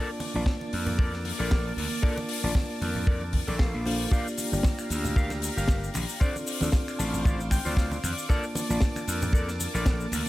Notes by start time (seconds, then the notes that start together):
Already playing: A#3 D4 F4 D5 A5 D6
0.20 muted clean electric guitar stroke, open hi-hat, muted conga
0.34 A#1 A#3 D4 F4 D5 A5, high conga
0.46 kick, snare
0.61 muted conga
0.73 F2, open hi-hat
0.87 muted clean electric guitar stroke, muted conga, low conga
0.98 A4 A#4 D5, kick
1.13 snare
1.24 muted clean electric guitar stroke, open hi-hat, muted conga
1.39 A#1 A4 A#4 D5
1.51 kick, snare, muted conga
1.77 D2, open hi-hat, high conga
1.91 muted conga
2.02 A#3 D4 F4 A4 A#4 D5 A5, kick
2.17 muted conga
2.29 muted clean electric guitar stroke, open hi-hat
2.42 A#1 A#3 D4 F4 D5 A5, high conga
2.55 kick, snare, muted conga
2.81 F2, open hi-hat, muted conga
2.95 muted clean electric guitar stroke, low conga
3.07 A4 A#4 D5, kick
3.21 muted conga
3.33 muted clean electric guitar stroke, kick, open hi-hat, high conga
3.47 A#1 A4 A#4 D5, muted conga
3.59 F5, kick, snare
3.74 A#1
3.85 A#3 D4 F4 A4 C5 F5, open hi-hat, muted conga, high conga
4.11 A#3 D4 F4 G4 A#4 D5 F5 A#5, kick, cabasa
4.28 cabasa
4.37 muted clean electric guitar stroke, open hi-hat, muted conga, cabasa
4.52 G1 A#3 D4 F4 G4 D5, high conga, cabasa
4.63 kick, snare, muted conga, cabasa
4.79 finger snap, cabasa
4.90 D2, open hi-hat, cabasa
5.04 muted clean electric guitar stroke, muted conga, low conga, cabasa
5.16 G4 A#4 F5, kick, cabasa
5.29 snare, muted conga, cabasa
5.42 muted clean electric guitar stroke, open hi-hat, cabasa
5.57 G1 G4 A#4 F5, cabasa
5.68 kick, snare, muted conga, cabasa
5.84 cabasa
5.94 A#1, finger snap, open hi-hat, muted conga, high conga, cabasa
6.09 cabasa
6.20 C4 D4 F4 A4 C5 D5 F5 D6, kick, cabasa
6.36 muted conga, cabasa
6.46 muted clean electric guitar stroke, open hi-hat, cabasa
6.60 D2 C4 D4 F4 A4 D5, muted conga, high conga, cabasa
6.72 kick, snare, cabasa
6.88 finger snap, cabasa
6.99 A1 A5, open hi-hat, muted conga, cabasa
7.13 muted clean electric guitar stroke, low conga, cabasa
7.24 F4 C5 D5 F5, kick, muted conga, cabasa
7.40 cabasa
7.51 G5, finger snap, muted clean electric guitar stroke, kick, open hi-hat, cabasa
7.65 D2 F4 C5 D5, muted conga, cabasa
7.77 F5, kick, snare, cabasa
7.92 muted conga, cabasa
8.04 F2, finger snap, open hi-hat, high conga, cabasa
8.12 D5
8.18 cabasa
8.29 A#3 D4 F4 A4 A#4 D5 A5, kick, muted conga, cabasa
8.43 cabasa
8.55 muted clean electric guitar stroke, open hi-hat, muted conga, cabasa
8.69 A#1 A#3 D4 F4 D5 A5, high conga, cabasa
8.81 kick, snare, cabasa
8.96 finger snap, muted conga, cabasa
9.07 F2, open hi-hat, cabasa
9.22 muted clean electric guitar stroke, muted conga, low conga, cabasa
9.33 A4 A#4 D5, kick, cabasa
9.48 snare, cabasa
9.59 muted clean electric guitar stroke, open hi-hat, muted conga, cabasa
9.74 A#1 A4 A#4 D5, cabasa
9.86 kick, snare, muted conga, cabasa
10.00 cabasa
10.12 D2, finger snap, open hi-hat, high conga, cabasa